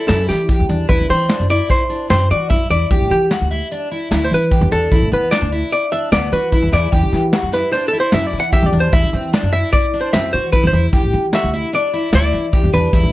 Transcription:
0.08 F#2 E4 A4, snare, closed hi-hat
0.29 E3 G4, snare, closed hi-hat
0.49 G4, kick, closed hi-hat
0.60 E2
0.69 E2 D4, closed hi-hat
0.89 E2 E4 B4, kick, closed hi-hat
1.00 D3
1.09 E3 C4 C5, closed hi-hat
1.29 D4, snare, closed hi-hat
1.40 F#2
1.50 E4 D5, closed hi-hat
1.70 C5, kick, closed hi-hat
1.90 D4, closed hi-hat
2.10 F#2 C4 C5, snare, closed hi-hat
2.31 E3 F#4 D5, closed hi-hat
2.50 F#2 E4 E5, kick, closed hi-hat
2.70 E2 E4 D5, closed hi-hat
2.91 E2 G4, kick, closed hi-hat
3.01 A2
3.10 E3 G4, closed hi-hat
3.31 F#4, snare, closed hi-hat
3.41 D2
3.51 E4, closed hi-hat
3.71 D4, closed hi-hat
3.91 E4, closed hi-hat
4.11 D2 E4, snare, closed hi-hat
4.25 C5
4.31 E3 B4, closed hi-hat
4.51 G4, kick, closed hi-hat
4.61 E2
4.71 E2 D4 A4, closed hi-hat
4.92 E2 E4, kick, closed hi-hat
5.02 A2
5.12 E3 B3 B4, closed hi-hat
5.31 D4 D5, snare, closed hi-hat
5.42 D2
5.52 E4, closed hi-hat
5.72 D5, closed hi-hat
5.92 D4 E5, closed hi-hat
6.12 D2 B3 D5, snare, closed hi-hat
6.32 E3 F#4 B4, closed hi-hat
6.52 E4, kick, closed hi-hat
6.62 E2
6.72 E2 E4 D5, snare, closed hi-hat
6.92 E2 G4, kick, closed hi-hat
7.02 D3
7.12 E3, snare, closed hi-hat
7.33 F#4, snare, closed hi-hat
7.43 F#2
7.52 E4 B4, snare, closed hi-hat
7.72 D4 C5, snare, closed hi-hat
7.88 A4
7.92 E4, closed hi-hat
8.00 C5
8.12 F#2 E4 E5, snare, closed hi-hat
8.27 D5
8.32 E3, closed hi-hat
8.40 F#5
8.52 G4 E5, kick, snare, closed hi-hat
8.63 E2 D5
8.72 E2 D4, closed hi-hat
8.80 C5
8.92 E2 E4 E5, kick, closed hi-hat
9.03 D3
9.13 E3 C4, closed hi-hat
9.33 D4, snare, closed hi-hat
9.43 F#2
9.53 E4 E5, closed hi-hat
9.73 D5, kick, snare, closed hi-hat
9.93 D4, closed hi-hat
10.01 C5
10.13 F#2 C4 E5, snare, closed hi-hat
10.33 E3 F#4 C5, closed hi-hat
10.52 E4 B4, kick, closed hi-hat
10.64 E2 C5
10.73 E2 E4, closed hi-hat
10.93 E2 G4, kick, closed hi-hat
11.03 A2
11.13 E3, closed hi-hat
11.33 F#4 E5, snare, closed hi-hat
11.44 D2
11.53 E4, closed hi-hat
11.73 D4 D5, closed hi-hat
11.93 E4, closed hi-hat
12.13 D2 E4 D5, snare, closed hi-hat
12.33 E3, closed hi-hat
12.53 G4, kick, closed hi-hat
12.64 E2
12.73 E2 D4 B4, closed hi-hat
12.93 E2 E4, kick, closed hi-hat
13.03 A2

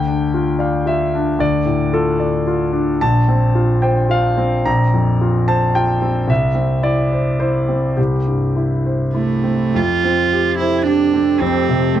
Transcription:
Already playing: D2 G5
0.07 D4
0.34 F4
0.59 D5 F5
0.86 F4 E5
1.15 D4
1.39 D2 D5
1.65 A2
1.93 F4 A4
2.20 D5
2.47 F4
2.73 D4
3.01 A#1 A5
3.28 C4
3.55 F4
3.82 C5 G5
4.09 F4 F5
4.37 C4
4.65 A#1 A#5
4.94 F2
5.21 F4
5.48 C5 A5
5.75 F4 G5
6.02 C4
6.28 C2 E5
6.55 C4
6.83 E4 D5
7.12 C5
7.40 E4 C5
7.69 C4
7.97 C2 G4
8.27 G2
8.56 E4
8.86 C5
9.14 A3 E4
9.44 C4
9.74 F2 C4 F4 G4 A4
10.04 C4
10.33 G4
10.59 E4 C5
10.86 D4 G4
11.14 C4
11.40 F2 C4
11.69 C3
11.94 A3 G4

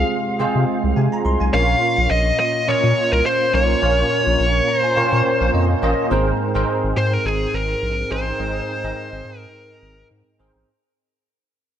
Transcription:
Already playing: C3 G#3 C4 F4 G4 G#4 C5 D#5 F5
0.39 C3 G#3 C4 F4 G#4 C5
0.55 C3
0.83 C2
0.96 C3 G#5
1.12 A#5
1.25 C2 C6
1.40 B1 G#5
1.52 A#1 A#2 A#3 C#4 F4 A#4 C#5 F5
1.97 A#1
2.10 A#1 D#5
2.40 D#5
2.67 A#2 A#3 C#4 F4 A#4 C#5 D#5
2.83 A#2
3.12 C2 A#4
3.26 C5
3.53 B1 A#3 C#4 F4 A#4 C#5
3.81 A#1 A#2 A#3 C#4 F4 A#4 C#5
4.26 A#1
4.39 A#1
4.68 A#5
4.79 C5
4.83 G#5
4.96 A#2 A#3 C#4 F4 A#4 C#5 G5
5.12 A#2
5.40 A#1 F5
5.53 F2 D#5
5.82 A1 A#3 C#4 F4 A#4 D#5
6.10 G#1 G#2 C4 D#4 G#4 A#4 C5
6.54 G#1 C4 D#4 G#4 A#4 C5
6.83 G#1
6.96 G#2 C5
7.13 A#4
7.25 G#1 G#4
7.53 G#1 A#4
7.82 A#1
8.10 A1 C4 D#4 G#4 A#4 C5
8.38 G#1 G#2 C4 D#4 G#4 A#4 D#5
8.83 G#1 C4 D#4 G#4 A#4 D#5
9.12 G#1
9.24 G#2
9.39 A#4
9.82 G#1
10.10 G#2
10.39 G#1 C4 D#4 G#4 A#4 C5
10.55 A1

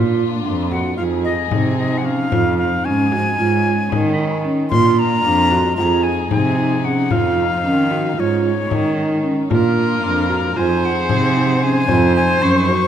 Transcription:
Already playing: A#2 A#3 D4 F4
0.45 F2 D4
0.71 F#4 F#5, frame drum
0.97 F2 F3 D#4 F4 G#4 F5
1.24 D#5, frame drum
1.51 C3 D#4, frame drum
1.78 D#4 D#5
1.98 F#5
2.05 C#4 F5, frame drum
2.32 F2 C4 F4, frame drum
2.58 F5
2.85 G#2 C#4 G#5
3.12 F#4, frame drum
3.39 G#2 G#3 C#4 F4
3.65 frame drum
3.92 D#3 D#4, frame drum
4.18 D#4
4.45 C#4, frame drum
4.70 A#2 A#3 D4 F4 C6, frame drum
4.99 A#5
5.25 F2 D4
5.51 F#4, frame drum
5.77 F2 F3 D#4 F4 G#4 A#5
6.03 G#5, frame drum
6.31 C3 D#4 G#5, frame drum
6.58 D#4
6.84 C#4 F#5, frame drum
7.11 F2 C4 F4 F5, frame drum
7.64 D#3 C#4
7.91 F#4, frame drum
8.18 G#2 G#3 C#4 F4 C#5, frame drum
8.71 D#3 D#4, frame drum
8.97 D#4
9.24 C#4
9.50 A#2 A#3 D4 F4 A#4, frame drum
10.03 F2 D4
10.29 F#4 A#5, frame drum
10.56 F2 F3 D#4 F4 G#4 C5 G#5
10.83 F#5, frame drum
11.09 C3 D#4, frame drum
11.36 D#4
11.62 C#4 G#5, frame drum
11.88 F2 F3 C4 F4 C5, frame drum
12.16 G#5
12.42 F#2 C#4 C#6
12.68 F#4, frame drum

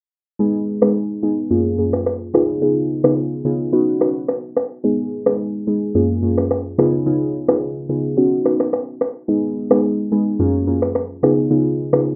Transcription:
0.39 G#3 B3 D#4 G#4
0.82 G#3 B3 D#4 G#4, finger snap, cross-stick
1.23 G#3 B3 D#4 G#4
1.50 F#2 A#3 C#4 F4 G#4
1.78 F#2 A#3 C#4 F4 G#4
1.93 finger snap, cross-stick
2.06 finger snap, cross-stick
2.34 C#3 B3 D#4 F4 G#4, finger snap, cross-stick
2.61 C#3 B3 D#4 F4 G#4
3.04 C#3 B3 D#4 F4 G#4, finger snap, cross-stick
3.45 C#3 B3 D#4 F4 G#4
3.73 B3 C#4 D#4 F#4
4.00 B3 C#4 D#4 F#4, finger snap, cross-stick
4.28 finger snap, cross-stick
4.57 finger snap, cross-stick
4.84 G#3 B3 D#4 G#4
5.26 G#3 B3 D#4 G#4, finger snap, cross-stick
5.67 G#3 B3 D#4 G#4
5.95 F#2 A#3 C#4 F4 G#4
6.23 F#2 A#3 C#4 F4 G#4
6.38 finger snap, cross-stick
6.51 finger snap, cross-stick
6.78 C#3 B3 D#4 F4 G#4, finger snap, cross-stick
7.06 C#3 B3 D#4 F4 G#4
7.48 C#3 B3 D#4 F4 G#4, finger snap, cross-stick
7.89 C#3 B3 D#4 F4 G#4
8.17 B3 C#4 D#4 F#4
8.45 B3 C#4 D#4 F#4, finger snap, cross-stick
8.60 finger snap, cross-stick
8.73 finger snap, cross-stick
9.01 finger snap, cross-stick
9.28 G#3 B3 D#4 G#4
9.70 G#3 B3 D#4 G#4, finger snap, cross-stick
10.12 G#3 B3 D#4 G#4
10.39 F#2 A#3 C#4 F4 G#4
10.67 F#2 A#3 C#4 F4 G#4
10.82 finger snap, cross-stick
10.95 finger snap, cross-stick
11.23 C#3 B3 D#4 F4 G#4, finger snap, cross-stick
11.50 C#3 B3 D#4 F4 G#4
11.93 C#3 B3 D#4 F4 G#4, finger snap, cross-stick

